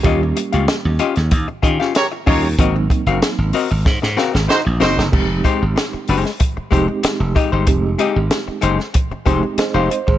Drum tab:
CC |----------------|----------------|x---------------|----------------|
HH |x-xxx-xxx-x-x-o-|x-xxx-o---------|--x-x-o-x-x-x-x-|x-x-x-x-x-x-x-x-|
SD |----o--o---oo---|----o---ooooo-oo|----o--o----o---|----o--o----o---|
BD |o-------o-o---o-|o-o-----o-------|o-o-----o-o---o-|o-------o-o----o|